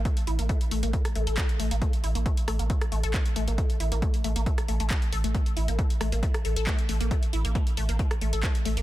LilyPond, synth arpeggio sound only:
\new Staff \with { instrumentName = "Synth arpeggio sound" } { \time 4/4 \key c \mixolydian \tempo 4 = 136 a16 r16 e'16 bes16 a16 r16 a16 bes16 a16 r16 a16 a'16 a16 r16 a16 bes16 | a16 r16 e'16 bes16 a16 r16 a16 bes16 a16 r16 a16 a'16 a16 r16 a16 bes16 | a16 r16 e'16 bes16 a16 r16 a16 bes16 a16 r16 a16 a16 a16 r16 a'16 a16 | a16 r16 e'16 bes16 a16 r16 a16 bes16 a16 r16 a16 a'16 a16 r16 a16 bes16 |
a16 r16 e'16 bes16 a16 r16 a16 bes16 a16 r16 a16 a'16 a16 r16 a16 bes16 | }